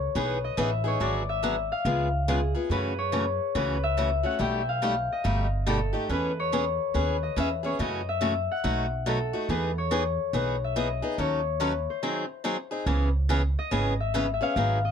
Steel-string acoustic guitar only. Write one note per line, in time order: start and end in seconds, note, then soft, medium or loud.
0.15 0.37 E3 medium
0.15 0.37 B3 medium
0.15 0.37 D#4 medium
0.15 0.37 G#4 medium
0.57 0.69 E3 medium
0.57 0.69 B3 medium
0.57 0.70 D#4 medium
0.57 0.70 G#4 medium
0.84 0.99 B3 soft
0.84 1.00 D#4 soft
0.84 1.00 G#4 medium
1.00 1.22 D3 medium
1.00 1.22 F#3 medium
1.00 1.22 B3 medium
1.00 1.22 F#4 medium
1.00 1.22 G#4 medium
1.43 1.54 D3 medium
1.43 1.55 F#3 medium
1.43 1.55 B3 medium
1.43 1.55 F#4 medium
1.43 1.55 G#4 medium
1.85 2.07 C#3 medium
1.85 2.07 G#3 medium
1.85 2.07 B3 medium
1.85 2.07 F4 medium
1.85 2.07 G#4 medium
2.28 2.39 C#3 medium
2.28 2.39 G#3 medium
2.28 2.39 B3 medium
2.28 2.40 F4 medium
2.28 2.40 G#4 medium
2.55 2.71 B3 soft
2.55 2.70 F4 soft
2.55 2.70 G#4 soft
2.71 2.92 C#3 medium
2.71 2.92 E3 medium
2.71 2.92 A3 medium
2.71 2.92 C#4 medium
2.71 2.92 F#4 medium
3.12 3.24 C#3 medium
3.12 3.24 E3 medium
3.12 3.24 A3 medium
3.12 3.24 C#4 medium
3.12 3.24 F#4 medium
3.55 3.77 C#3 medium
3.55 3.76 E3 medium
3.55 3.77 A3 medium
3.55 3.77 C#4 medium
3.55 3.77 F#4 medium
3.97 4.09 C#3 medium
3.97 4.09 E3 medium
3.97 4.09 A3 medium
3.97 4.09 C#4 medium
3.97 4.09 F#4 medium
4.23 4.38 A3 soft
4.23 4.39 C#4 soft
4.23 4.39 F#4 medium
4.39 4.61 B2 medium
4.39 4.61 G3 medium
4.39 4.61 A3 medium
4.39 4.61 D#4 medium
4.39 4.61 G4 medium
4.82 4.93 B2 medium
4.82 4.94 G3 medium
4.82 4.94 A3 medium
4.82 4.94 D#4 medium
4.82 4.94 G4 medium
5.24 5.46 B2 medium
5.24 5.46 G3 medium
5.24 5.46 A3 medium
5.24 5.46 D#4 medium
5.24 5.46 G4 medium
5.66 5.78 B2 medium
5.66 5.78 G3 medium
5.66 5.78 A3 medium
5.66 5.78 D#4 medium
5.66 5.79 G4 medium
5.93 6.09 A3 soft
5.93 6.09 D#4 soft
5.93 6.09 G4 soft
6.09 6.31 E3 medium
6.09 6.31 B3 medium
6.09 6.31 C#4 medium
6.09 6.31 G#4 medium
6.52 6.63 E3 medium
6.52 6.64 B3 medium
6.52 6.64 C#4 medium
6.52 6.64 G#4 medium
6.94 7.16 E3 medium
6.94 7.16 B3 medium
6.94 7.16 C#4 medium
6.94 7.16 G#4 medium
7.36 7.48 E3 medium
7.36 7.48 B3 medium
7.36 7.49 C#4 medium
7.36 7.49 G#4 medium
7.63 7.79 B3 soft
7.63 7.79 C#4 soft
7.63 7.78 G#4 medium
7.79 8.00 C#3 medium
7.79 8.01 E3 medium
7.79 8.01 A3 medium
7.79 8.01 C#4 medium
7.79 8.01 F#4 medium
8.21 8.32 C#3 medium
8.21 8.32 E3 medium
8.21 8.33 A3 medium
8.21 8.33 C#4 medium
8.21 8.33 F#4 medium
8.64 8.85 B2 medium
8.64 8.85 F#3 medium
8.64 8.85 A3 medium
8.64 8.85 D#4 medium
8.64 8.86 F#4 medium
9.06 9.18 B2 medium
9.06 9.17 F#3 medium
9.06 9.18 A3 medium
9.06 9.18 D#4 medium
9.06 9.18 F#4 medium
9.33 9.49 A3 soft
9.33 9.48 D#4 soft
9.33 9.48 F#4 medium
9.49 9.70 E3 medium
9.49 9.70 B3 medium
9.49 9.70 D#4 medium
9.49 9.71 G#4 medium
9.91 10.02 E3 medium
9.91 10.02 B3 medium
9.91 10.02 D#4 medium
9.91 10.03 G#4 medium
10.33 10.55 E3 medium
10.33 10.55 B3 medium
10.33 10.55 D#4 medium
10.33 10.55 G#4 medium
10.76 10.87 E3 medium
10.76 10.87 B3 medium
10.76 10.87 D#4 medium
10.76 10.87 G#4 medium
11.02 11.18 B3 soft
11.02 11.18 D#4 soft
11.02 11.18 G#4 medium
11.18 11.39 D#3 soft
11.18 11.40 F#3 medium
11.18 11.40 C#4 medium
11.18 11.40 D#4 medium
11.18 11.40 A4 medium
11.60 11.71 D#3 medium
11.60 11.72 F#3 medium
11.60 11.72 C#4 medium
11.60 11.72 D#4 medium
11.60 11.72 A4 medium
12.03 12.24 D#3 medium
12.03 12.24 F#3 medium
12.03 12.24 C4 medium
12.03 12.24 D#4 medium
12.03 12.24 G#4 medium
12.44 12.56 D#3 medium
12.44 12.56 F#3 medium
12.44 12.56 C4 medium
12.44 12.56 D#4 medium
12.44 12.56 G#4 medium
12.71 12.86 C4 soft
12.71 12.87 D#4 soft
12.71 12.86 G#4 medium
12.86 13.08 C#3 medium
12.86 13.08 E3 medium
12.86 13.08 B3 medium
12.86 13.08 C#4 medium
12.86 13.09 G#4 medium
13.29 13.41 C#3 medium
13.29 13.41 E3 medium
13.29 13.41 B3 medium
13.29 13.41 C#4 medium
13.29 13.41 G#4 medium
13.71 13.93 C#3 medium
13.71 13.93 E3 medium
13.71 13.93 B3 medium
13.71 13.93 C#4 medium
13.71 13.93 G#4 medium
14.14 14.25 C#3 medium
14.14 14.26 E3 medium
14.14 14.26 B3 medium
14.14 14.26 C#4 medium
14.14 14.26 G#4 medium
14.41 14.56 B3 soft
14.41 14.56 C#4 soft
14.41 14.56 G#4 medium
14.57 14.78 D#3 medium
14.57 14.78 F#3 medium
14.57 14.78 B3 medium
14.57 14.78 D#4 medium
14.57 14.78 G#4 medium